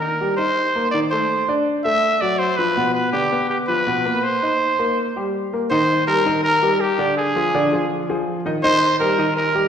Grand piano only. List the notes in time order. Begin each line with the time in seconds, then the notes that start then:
Already playing: D#3 D#4
0.21 G3 G4
0.39 D#4 D#5
0.75 A#3 A#4
0.94 D#3 D#4
1.12 A3 A4
1.48 D4 D5
1.85 A3 A4
2.22 F#3 F#4
2.59 F3 F4
2.77 B2 B3
3.13 D3 D4
3.32 B3 B4
3.68 F3 F4
3.87 B2 B3
4.05 A#3 A#4
4.43 D#4 D#5
4.79 A#3 A#4
5.16 G3 G4
5.53 A#3 A#4
5.71 D#3 D#4 D#5
6.08 G3 G4 A#4
6.26 D#3 D#4 D#5
6.62 G3 G4 A#4
6.98 D3 D4 D5
7.36 F3 F4 G#4
7.54 D3 D4 D5
7.72 F3 F4 G#4
8.09 F3 F4 G#4
8.46 D#3 D#4 D#5
8.64 D#3 D#4 D#5
9.00 G3 G4 A#4
9.18 D#3 D#4 D#5
9.55 G3 G4 A#4